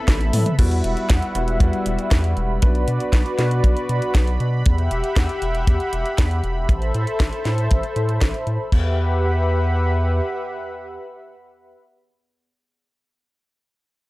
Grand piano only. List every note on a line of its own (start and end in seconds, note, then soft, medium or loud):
0.00 0.56 B3 medium
0.00 0.56 C4 medium
0.00 0.56 E4 medium
0.00 0.56 B4 medium
0.59 1.32 G3 medium
0.59 1.32 B3 medium
0.59 1.32 E4 medium
0.59 1.32 F#4 loud
1.35 1.57 G3 medium
1.35 1.57 B3 medium
1.35 1.57 E4 medium
1.35 1.57 F#4 medium
1.60 2.59 G3 medium
1.60 2.59 B3 medium
1.60 2.59 E4 medium
1.60 2.59 F#4 loud
2.62 3.35 B3 medium
2.62 3.35 D4 medium
2.62 3.35 F#4 medium
2.62 3.35 B4 medium
3.38 4.62 B3 medium
3.38 4.62 D4 medium
3.38 4.62 F#4 medium
3.38 4.62 D5 medium